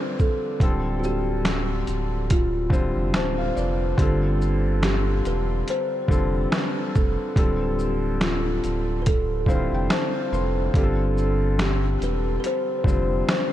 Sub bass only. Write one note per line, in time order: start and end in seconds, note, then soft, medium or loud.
0.60 1.83 D1 medium
1.88 2.92 D1 medium
2.96 3.12 F1 medium
3.14 3.51 D1 medium
3.57 3.94 F1 medium
3.98 5.21 G1 loud
5.26 5.63 E1 loud
6.09 6.46 F1 medium
6.96 7.16 F1 loud
7.36 8.59 D1 loud
8.64 9.69 D1 loud
9.72 9.88 F1 loud
10.32 10.69 F1 medium
10.74 11.97 G1 loud
12.02 12.39 E1 loud
12.85 13.23 F1 medium